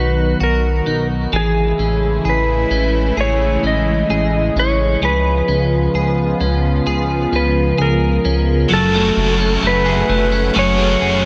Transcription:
Already playing: analog synth bass B1, analog synth pad D#3 F#3 B3 F#4, clean electric guitar F#3 D#4 F#4, electric slide guitar B4
0.40 analog synth bass B1, clean electric guitar F#4, electric slide guitar A#4
0.86 analog synth bass B1, clean electric guitar D#4
1.32 analog synth bass A1, analog synth pad C#3 E3 G#3 A3 E4, clean electric guitar E3 G#4, electric slide guitar G#4
1.78 analog synth bass A1, clean electric guitar C#4
2.25 analog synth bass A1, clean electric guitar G#4
2.29 electric slide guitar B4
2.71 analog synth bass A1, clean electric guitar C#4
3.17 analog synth bass A1, clean electric guitar G#4, electric slide guitar C#5
3.63 analog synth bass A1, clean electric guitar C#4, electric slide guitar D#5
4.10 analog synth bass A1, clean electric guitar G#4
4.56 analog synth bass A1, clean electric guitar C#4, electric slide guitar C#5
5.01 analog synth bass C#2, analog synth pad F3 B3 F4, clean electric guitar F3 G#4, electric slide guitar B4
5.48 analog synth bass C#2, clean electric guitar C#4
5.94 analog synth bass C#2, clean electric guitar G#4
6.40 analog synth bass C#2, clean electric guitar C#4
6.86 analog synth bass C#2, clean electric guitar G#4
7.32 analog synth bass C#2, clean electric guitar C#4, electric slide guitar B4
7.78 analog synth bass C#2, clean electric guitar G#4, electric slide guitar A#4
8.25 analog synth bass C#2, clean electric guitar C#4
8.68 analog synth bass F#1, overdriven electric guitar F#3 A3, clean electric guitar F#3, analog synth pad A3 F#5 G#5 C#6
8.73 overdriven electric guitar C#4 F#4, electric slide guitar A4
8.94 clean electric guitar A3
9.17 analog synth bass F#1
9.40 clean electric guitar C#4
9.62 analog synth bass F#1, clean electric guitar A3
9.67 electric slide guitar B4
9.86 clean electric guitar G#4
10.09 analog synth bass F#1, clean electric guitar A3
10.32 clean electric guitar C#4
10.54 analog synth bass F#1, clean electric guitar F#3 G#4, overdriven electric guitar A3 C#4 F#4
10.59 overdriven electric guitar G#4, electric slide guitar C#5
10.79 clean electric guitar A3
11.02 analog synth bass F#1, clean electric guitar G#4

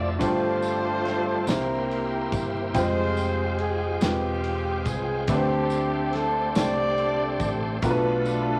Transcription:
Already playing: fingered electric bass F1, tonewheel organ F3 C4 D4 A4 E5, grand piano A3 D4 F4 F#4 G4 E5
0.18 fingered electric bass G1, grand piano G2 A3 D4 F4 G4 C5, tonewheel organ G3 B3 D4 F4 A4, kick, tambourine
0.22 horn section F4 A4 C5, ride
0.26 tonewheel organ C4
0.62 ride, tambourine
1.05 snare, ride
1.46 fingered electric bass C2, grand piano C3 A#3 C4 E4 G4 C5, tonewheel organ A#3 C4 D4 G4 C5, horn section E4 G4 A#4, snare, ride, tambourine
1.54 tonewheel organ E4
1.91 ride
2.32 fingered electric bass G1, kick, ride, tambourine
2.74 fingered electric bass F1, grand piano G3 C4 F4 C5 G5, tonewheel organ G#3 C4 F4 B4 G5, horn section G4 G#4 C5, kick, ride, tambourine
2.81 grand piano G#3
3.17 ride, tambourine
3.59 horn section G#4, ride
4.01 fingered electric bass E1, grand piano G#3 C4 F4 B4 G5, horn section C4 G4, snare, ride, tambourine
4.44 ride
4.85 fingered electric bass C2, horn section G#4, kick, ride, tambourine
5.27 fingered electric bass D2, grand piano D3 A3 C4 D4 G4 B4, tonewheel organ A3 C4 D4 G4 C5, horn section C4 G4, kick, ride, tambourine
5.36 grand piano C5
5.70 ride, tambourine
6.13 horn section A4, snare, ride
6.55 fingered electric bass C2, grand piano A3 C4 D4 G4 C5, horn section G4 A4 D5, snare, ride, tambourine
6.98 ride
7.40 fingered electric bass A1, kick, ride, tambourine
7.81 fingered electric bass B1, grand piano B2 A3 B3 D4 F4 A#4, tonewheel organ A3 B3 D4 F4 B4, horn section D4, kick, ride, tambourine
7.85 horn section F4 A4
7.90 grand piano B4
8.25 ride, tambourine

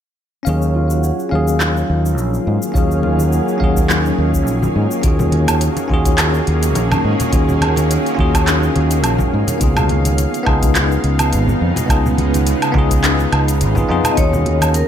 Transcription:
0.43 fingered electric bass D#2, tine electric piano C#4 F5, harp C#4, shaker
0.47 ambient pad D#3 F#3 A#3 C#4 G#4 F5, tine electric piano F#3 G#4
0.62 harp D#4, shaker
0.75 harp F4
0.90 harp F#4, shaker
1.03 harp G#4, shaker
1.19 harp F#4, shaker
1.29 fingered electric bass D#2, tine electric piano F#3 C#4 F5
1.35 tine electric piano G#4
1.48 shaker
1.60 harp F4, clap, shaker
1.77 shaker
1.88 fingered electric bass D#2, harp D#4
2.05 harp C#4, shaker
2.17 fingered electric bass A#1, harp D#4, shaker
2.34 shaker
2.46 fingered electric bass G#2, harp F4
2.62 shaker
2.72 fingered electric bass D#2, tine electric piano C#4 F5, harp C#4, kick, shaker
2.77 tine electric piano F#3 G#4
2.90 harp D#4, shaker
3.03 harp F4, high conga
3.19 harp F#4, high conga, shaker
3.32 harp G#4, shaker
3.48 harp F#4, shaker
3.58 fingered electric bass D#2, tine electric piano F#3 C#4 F5, kick
3.64 tine electric piano G#4
3.76 kick, shaker
3.90 harp F4, clap, shaker
4.06 shaker
4.18 fingered electric bass D#2, harp D#4
4.33 harp C#4, kick, shaker
4.47 fingered electric bass A#1, harp D#4, shaker
4.63 high conga, shaker
4.75 fingered electric bass G#2, harp F4
4.91 shaker
5.01 fingered electric bass D#2, ambient pad D#3 F#3 A#3 C#4 G#4 F5, tine electric piano C#4 F4, kick, closed hi-hat, shaker
5.06 tine electric piano F#4 G#4
5.19 muted conga, low conga, shaker
5.32 closed hi-hat, high conga
5.48 closed hi-hat, high conga, low woodblock, shaker
5.61 closed hi-hat, shaker
5.77 closed hi-hat, muted conga, shaker
5.88 fingered electric bass D#2, tine electric piano C#4 F4 F#4, kick
5.94 tine electric piano G#4
6.05 kick, closed hi-hat, shaker
6.18 clap, closed hi-hat, muted conga, low woodblock, shaker
6.34 shaker
6.47 fingered electric bass D#2, closed hi-hat
6.63 closed hi-hat, shaker
6.75 fingered electric bass A#1, closed hi-hat, muted conga, shaker
6.92 high conga, low conga, low woodblock, shaker
7.04 fingered electric bass G#2
7.19 closed hi-hat, muted conga, low conga, shaker
7.30 fingered electric bass D#2, tine electric piano C#4 F4, kick, closed hi-hat, shaker
7.34 tine electric piano F#4 G#4
7.49 low conga, shaker
7.61 closed hi-hat, high conga, low woodblock
7.76 closed hi-hat, muted conga, high conga, shaker
7.91 closed hi-hat, shaker
8.06 closed hi-hat, shaker
8.15 fingered electric bass D#2, tine electric piano C#4 F4, kick
8.19 tine electric piano F#4 G#4, muted conga
8.34 kick, closed hi-hat, low woodblock, shaker
8.47 clap, closed hi-hat, shaker
8.63 shaker
8.76 fingered electric bass D#2, closed hi-hat, muted conga
8.91 closed hi-hat, shaker
9.04 fingered electric bass A#1, closed hi-hat, low woodblock, shaker
9.19 kick, muted conga, high conga, low conga, shaker
9.33 fingered electric bass G#2
9.47 closed hi-hat, low conga, shaker
9.58 fingered electric bass C#2, ambient pad C#3 G#3 B3 D#4, tine electric piano B3 D#4 F4, kick, closed hi-hat, shaker
9.64 tine electric piano G#4
9.77 muted conga, low conga, low woodblock, shaker
9.89 closed hi-hat, high conga
10.05 closed hi-hat, high conga, shaker
10.18 closed hi-hat, muted conga, shaker
10.34 closed hi-hat, shaker
10.43 fingered electric bass C#2, tine electric piano B3 D#4 F4, kick, low woodblock
10.49 tine electric piano G#4
10.62 kick, closed hi-hat, shaker
10.75 clap, closed hi-hat, muted conga, shaker
10.92 shaker
11.04 fingered electric bass C#2, closed hi-hat
11.19 closed hi-hat, muted conga, low woodblock, shaker
11.33 fingered electric bass G#1, closed hi-hat, shaker
11.48 high conga, low conga, shaker
11.61 fingered electric bass F2
11.76 closed hi-hat, muted conga, low conga, shaker
11.86 fingered electric bass C#2, tine electric piano B3 D#4 F4, kick, closed hi-hat, low woodblock
11.90 tine electric piano G#4, shaker
12.06 low conga, shaker
12.18 closed hi-hat, muted conga, high conga
12.34 closed hi-hat, high conga, shaker
12.47 closed hi-hat, shaker
12.62 closed hi-hat, low woodblock, shaker
12.72 fingered electric bass C#2, tine electric piano B3 D#4, kick, muted conga
12.76 tine electric piano F4 G#4
12.91 kick, closed hi-hat, shaker
13.04 clap, closed hi-hat, shaker
13.19 muted conga, shaker
13.32 fingered electric bass C#2, closed hi-hat, low woodblock
13.48 closed hi-hat, shaker
13.61 fingered electric bass G#1, closed hi-hat, shaker
13.75 tine electric piano B3 D#4 F4 G#4, kick, muted conga, high conga, low conga, shaker
13.88 fingered electric bass F2, tine electric piano B3 D#4 F4 G#4
14.04 closed hi-hat, low conga, low woodblock, shaker
14.11 vibraphone D#5
14.15 fingered electric bass D#2, ambient pad D#3 F#3 A#3 C#4 G#4 F5, tine electric piano C#4 F4 F#4, vibraphone C#5, kick, closed hi-hat, shaker
14.21 tine electric piano G#4
14.33 muted conga, low conga, shaker
14.46 closed hi-hat, high conga
14.61 closed hi-hat, high conga, low woodblock, shaker
14.74 vibraphone A#4, closed hi-hat, shaker

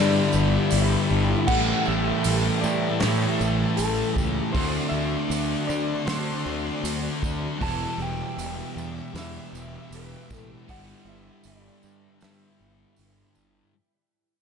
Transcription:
Already playing: fingered electric bass G2, distorted electric guitar G2 D3 G3, twelve-string acoustic guitar E3 B3 D4 G4, string machine G4 E5 B5, clean electric guitar D5
0.32 fingered electric bass G1, twelve-string acoustic guitar B3, tambourine
0.71 fingered electric bass G1, twelve-string acoustic guitar E3, open hi-hat, tambourine
1.10 fingered electric bass G1, twelve-string acoustic guitar D4
1.47 fingered electric bass A1, overdriven electric guitar A2 E3 G3 C#4 E4, distorted electric guitar A2 E3 A3, twelve-string acoustic guitar E3, string machine E5 A5, clean electric guitar F#5, kick, crash
1.86 fingered electric bass A1, twelve-string acoustic guitar A3, clean electric guitar E5, tambourine
2.24 fingered electric bass A1, twelve-string acoustic guitar G4, open hi-hat, tambourine
2.61 fingered electric bass A2, clean electric guitar D5, tambourine
3.00 distorted electric guitar A2 E3, fingered electric bass A2, twelve-string acoustic guitar E3, clean electric guitar C#5, snare, open hi-hat, tambourine
3.04 distorted electric guitar A3
3.39 fingered electric bass A1, twelve-string acoustic guitar A3, tambourine
3.76 fingered electric bass A1, twelve-string acoustic guitar E3, clean electric guitar A4, open hi-hat, tambourine
4.16 fingered electric bass C#2, twelve-string acoustic guitar C#4, clean electric guitar G4, kick, tambourine
4.52 fingered electric bass D2, distorted electric guitar D3 A3, overdriven electric guitar D3 A3, twelve-string acoustic guitar F#3, string machine F#4 D5 C6, clean electric guitar C5, kick, open hi-hat
4.57 overdriven electric guitar C4 F#4, distorted electric guitar D4
4.89 fingered electric bass D2, twelve-string acoustic guitar A3, clean electric guitar E5
4.93 tambourine
5.30 fingered electric bass D2, twelve-string acoustic guitar F#4, open hi-hat, tambourine
5.67 fingered electric bass D3, twelve-string acoustic guitar C4, clean electric guitar D5, tambourine
6.06 distorted electric guitar D3 A3 D4, fingered electric bass D3, twelve-string acoustic guitar F#3, clean electric guitar C5, snare, open hi-hat, tambourine
6.46 fingered electric bass D2, twelve-string acoustic guitar A3
6.84 fingered electric bass D2, twelve-string acoustic guitar F#3, open hi-hat, tambourine
7.23 fingered electric bass D2, twelve-string acoustic guitar C4, kick, tambourine
7.60 fingered electric bass E1, distorted electric guitar E2 B2 E3, overdriven electric guitar E3 G3 B3 E4, twelve-string acoustic guitar E3, string machine G4 E5 D6, clean electric guitar A5, kick, open hi-hat
7.98 fingered electric bass E1, twelve-string acoustic guitar B3, tambourine
8.02 clean electric guitar G5
8.38 fingered electric bass E1, twelve-string acoustic guitar G4, open hi-hat, tambourine
8.76 fingered electric bass E2, twelve-string acoustic guitar D4, tambourine
9.14 distorted electric guitar E2 B2 E3, fingered electric bass E2, twelve-string acoustic guitar E3, snare, open hi-hat, tambourine
9.19 clean electric guitar E5
9.53 fingered electric bass E1, twelve-string acoustic guitar B3, tambourine
9.91 fingered electric bass E1, twelve-string acoustic guitar E3, open hi-hat, tambourine
9.96 clean electric guitar B4
10.30 fingered electric bass A1, twelve-string acoustic guitar D4, kick, snare, tambourine
10.36 clean electric guitar A4
10.67 fingered electric bass G1, overdriven electric guitar G2 D3 G3 B3 D4, distorted electric guitar G2 D3 G3, twelve-string acoustic guitar E3, clean electric guitar F#5, string machine B5, kick, open hi-hat, tambourine
11.05 fingered electric bass G1, twelve-string acoustic guitar B3, clean electric guitar E5, tambourine
11.44 fingered electric bass G1, twelve-string acoustic guitar G4, clean electric guitar D5, open hi-hat, tambourine
11.82 fingered electric bass G2, twelve-string acoustic guitar D4, tambourine
12.20 distorted electric guitar G2 D3 G3, fingered electric bass G2, twelve-string acoustic guitar E3, clean electric guitar E5, snare, open hi-hat, tambourine
12.59 fingered electric bass G1, twelve-string acoustic guitar B3
12.96 fingered electric bass G1, twelve-string acoustic guitar E3, open hi-hat, tambourine
13.35 fingered electric bass G1, twelve-string acoustic guitar D4, tambourine

